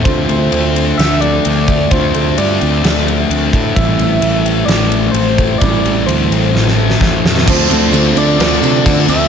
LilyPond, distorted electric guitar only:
\new Staff \with { instrumentName = "Distorted electric guitar" } { \time 4/4 \key d \minor \tempo 4 = 129 <d a d'>1 | <d a d'>1 | <a, e a>1 | <a, e a>1 |
<d a d'>8 <a d'>8 <d a d'>8 <a d'>8 <d a d'>4 <d a d'>8 <a d'>8 | }